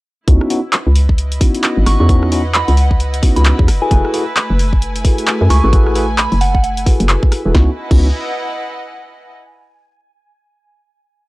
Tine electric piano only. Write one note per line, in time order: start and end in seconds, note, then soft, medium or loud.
0.27 0.48 B3 medium
0.27 0.48 C#4 medium
0.27 0.48 D#4 medium
0.27 0.48 E4 medium
0.27 0.48 F#4 loud
0.50 0.59 B3 medium
0.50 0.59 C#4 medium
0.50 0.59 D#4 medium
0.50 0.59 E4 medium
0.50 0.59 F#4 medium
1.41 1.97 B3 medium
1.41 1.97 C#4 medium
1.41 1.97 D#4 medium
1.41 1.97 E4 medium
1.41 1.97 F#4 medium
2.00 2.07 B3 medium
2.00 2.07 C#4 medium
2.00 2.07 D#4 medium
2.00 2.07 E4 medium
2.00 2.07 F#4 medium
2.09 2.30 B3 medium
2.09 2.30 C#4 medium
2.09 2.30 D#4 medium
2.09 2.30 E4 medium
2.09 2.30 F#4 loud
2.32 2.41 B3 medium
2.32 2.41 C#4 medium
2.32 2.41 D#4 medium
2.32 2.41 E4 medium
2.32 2.41 F#4 medium
3.23 3.67 B3 medium
3.23 3.67 C#4 medium
3.23 3.67 D#4 medium
3.23 3.67 E4 medium
3.23 3.67 F#4 medium
3.82 3.89 E4 medium
3.82 3.89 F#4 medium
3.82 3.89 G#4 medium
3.82 3.89 A4 medium
3.82 3.89 B4 medium
3.91 4.12 E4 loud
3.91 4.12 F#4 medium
3.91 4.12 G#4 medium
3.91 4.12 A4 medium
3.91 4.12 B4 loud
4.14 4.23 E4 medium
4.14 4.23 F#4 medium
4.14 4.23 G#4 medium
4.14 4.23 A4 medium
4.14 4.23 B4 medium
5.05 5.60 E4 medium
5.05 5.60 F#4 medium
5.05 5.60 G#4 medium
5.05 5.60 A4 medium
5.05 5.60 B4 medium
5.64 5.71 E4 medium
5.64 5.71 F#4 medium
5.64 5.71 G#4 medium
5.64 5.71 A4 medium
5.64 5.71 B4 medium
5.73 5.93 E4 loud
5.73 5.93 F#4 medium
5.73 5.93 G#4 medium
5.73 5.93 A4 medium
5.73 5.93 B4 loud
5.96 6.05 E4 medium
5.96 6.05 F#4 medium
5.96 6.05 G#4 medium
5.96 6.05 A4 medium
5.96 6.05 B4 loud
6.87 7.42 E4 medium
6.87 7.42 F#4 medium
6.87 7.42 G#4 medium
6.87 7.42 A4 medium
6.87 7.42 B4 medium
7.46 7.52 E4 medium
7.46 7.52 F#4 medium
7.46 7.52 G#4 medium
7.46 7.52 A4 medium
7.46 7.52 B4 medium
7.55 7.69 B3 medium
7.55 7.69 C#4 medium
7.55 7.69 D#4 medium
7.55 7.69 E4 medium
7.55 7.69 F#4 medium
7.91 8.07 B3 medium
7.91 8.07 C#4 medium
7.91 8.07 D#4 medium
7.91 8.07 E4 medium
7.91 8.07 F#4 medium